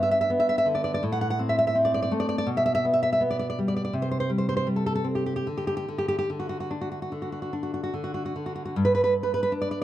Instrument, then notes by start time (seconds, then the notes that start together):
nylon-string guitar
Already playing: G2 B3
0.03 E5
0.11 E5
0.21 E5
0.30 B3
0.40 E5
0.49 E5
0.58 E5
0.66 D3
0.75 D5
0.84 D5
0.94 D5
1.03 A2
1.12 F#5
1.21 F#5
1.30 F#5
1.39 C4
1.49 E5
1.59 E5
1.67 E5
1.75 C4
1.85 D5
1.94 D5
2.02 D5
2.11 A3
2.20 D5
2.29 D5
2.38 D5
2.47 B2
2.57 E5
2.66 E5
2.75 E5
2.85 B3
2.94 E5
3.03 E5
3.13 E5
3.21 B3
3.31 D5
3.39 D5
3.50 D5
3.59 G3
3.68 D5
3.76 D5
3.85 D5
3.93 C3
4.02 C5
4.11 C5
4.20 C5
4.30 G3
4.38 C5
4.49 C5
4.57 C5
4.67 G3
4.76 A4
4.86 A4
4.95 A4
5.04 C4
5.15 G4
5.26 G4
5.36 G4
5.47 D3
5.57 G4
5.67 G4
5.77 G4
5.88 D3
5.98 G4
6.08 G4
6.19 G4
6.30 D3
6.40 F#4
6.49 F#4
6.60 F#4
6.71 D4
6.81 F#4
6.92 F#4
7.02 F#4
7.12 D3
7.22 F#4
7.32 F#4
7.42 F#4
7.53 D4
7.63 F#4
7.74 F#4
7.83 F#4
7.94 D3
8.04 F#4
8.14 F#4
8.26 F#4
8.36 D3
8.46 F#4
8.55 F#4
8.65 F#4
8.76 G2
8.85 B4
8.95 B4
9.04 B4
9.23 B4
9.34 B4
9.43 B4
9.52 D4
9.62 D5
9.71 D5